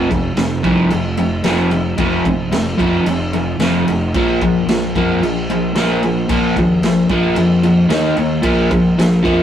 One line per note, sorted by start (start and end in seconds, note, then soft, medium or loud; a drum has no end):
0.00 0.36 F1 medium
0.10 0.35 F2 medium
0.10 0.35 C3 medium
0.10 kick loud
0.10 crash medium
0.36 0.63 F1 medium
0.36 0.62 F2 medium
0.36 0.62 C3 medium
0.36 snare medium
0.36 crash medium
0.63 0.90 C2 medium
0.63 0.89 F2 loud
0.63 0.90 C3 medium
0.63 0.90 F3 loud
0.63 kick medium
0.63 crash medium
0.90 1.43 F1 medium
0.90 1.15 F2 medium
0.90 1.16 C3 medium
0.90 crash medium
1.17 1.42 F2 medium
1.17 1.42 C3 medium
1.17 crash medium
1.44 1.97 F1 medium
1.44 1.70 F2 loud
1.44 1.71 C3 medium
1.44 1.71 F3 loud
1.44 snare loud
1.44 crash medium
1.71 1.96 F2 medium
1.71 1.96 C3 medium
1.71 crash medium
1.98 2.24 F1 medium
1.98 2.23 F2 medium
1.98 2.24 C3 loud
1.98 2.24 F3 loud
1.98 kick loud
1.98 crash medium
2.25 2.51 A#1 medium
2.25 2.50 F2 medium
2.25 2.50 C3 medium
2.25 kick medium
2.25 crash medium
2.51 2.78 F1 loud
2.51 2.76 F2 medium
2.51 2.77 C3 medium
2.51 snare loud
2.51 crash medium
2.78 3.05 F1 medium
2.78 3.04 F2 medium
2.78 3.04 C3 loud
2.78 3.04 F3 loud
2.78 kick medium
2.78 crash medium
3.05 3.58 F1 medium
3.05 3.31 F2 medium
3.05 3.31 C3 medium
3.05 crash medium
3.33 3.57 F2 medium
3.33 3.58 C3 medium
3.33 crash medium
3.59 3.85 F1 medium
3.59 3.85 F2 loud
3.59 3.86 C3 loud
3.59 3.86 F3 loud
3.59 snare loud
3.59 crash medium
3.88 4.13 F1 medium
3.88 4.12 F2 medium
3.88 4.12 C3 medium
3.88 crash medium
4.14 4.65 A#1 medium
4.14 4.40 A#2 medium
4.14 4.40 F3 medium
4.14 4.40 A#3 loud
4.14 kick loud
4.14 crash medium
4.41 4.66 A#2 medium
4.41 4.66 F3 loud
4.41 kick medium
4.41 crash medium
4.66 4.93 A#1 medium
4.66 4.93 A#2 medium
4.66 snare loud
4.66 crash medium
4.70 4.93 F3 medium
4.95 5.20 F2 medium
4.95 5.20 A#2 medium
4.95 5.21 F3 loud
4.95 5.21 A#3 loud
4.95 kick medium
4.95 crash medium
5.20 5.73 A#1 medium
5.20 5.46 A#2 medium
5.20 5.46 F3 medium
5.20 crash medium
5.50 5.73 A#2 medium
5.50 5.74 F3 medium
5.50 crash medium
5.75 6.27 A#1 loud
5.75 6.01 A#2 loud
5.75 6.01 F3 loud
5.75 6.01 A#3 loud
5.75 snare loud
5.75 crash medium
6.03 6.27 A#2 medium
6.03 6.27 F3 medium
6.03 crash medium
6.29 6.55 A#1 medium
6.29 6.54 A#2 loud
6.29 6.55 F3 loud
6.29 6.55 A#3 loud
6.29 kick loud
6.29 crash medium
6.56 6.82 D#2 medium
6.56 6.81 A#2 medium
6.56 6.81 F3 medium
6.56 kick medium
6.56 crash medium
6.83 7.09 A#1 loud
6.83 7.08 A#2 medium
6.83 7.08 F3 medium
6.83 snare loud
6.83 crash medium
7.09 7.36 A#1 medium
7.09 7.35 A#2 medium
7.09 7.35 F3 loud
7.09 7.36 A#3 loud
7.09 kick medium
7.09 crash medium
7.36 7.88 F2 loud
7.36 7.61 A#2 medium
7.36 7.61 F3 medium
7.36 crash medium
7.63 7.88 A#2 medium
7.63 7.88 F3 medium
7.63 crash medium
7.89 8.16 D#2 medium
7.89 8.15 D#3 medium
7.89 8.16 A#3 loud
7.89 8.16 D#4 loud
7.89 snare loud
7.89 crash medium
8.17 8.43 D#2 medium
8.17 8.41 D#3 medium
8.17 8.42 A#3 medium
8.17 crash medium
8.42 8.96 A#1 medium
8.42 8.68 A#2 medium
8.42 8.69 F3 loud
8.42 8.69 A#3 loud
8.42 kick loud
8.42 crash medium
8.71 8.95 A#2 medium
8.71 8.95 F3 medium
8.71 kick loud
8.71 crash medium
8.97 9.24 A#1 medium
8.97 9.22 A#2 medium
8.97 9.22 F3 medium
8.97 snare loud
8.97 crash medium
9.23 9.43 F2 medium
9.23 9.43 A#2 loud
9.23 9.43 F3 loud
9.23 9.43 A#3 loud
9.23 kick medium
9.23 crash medium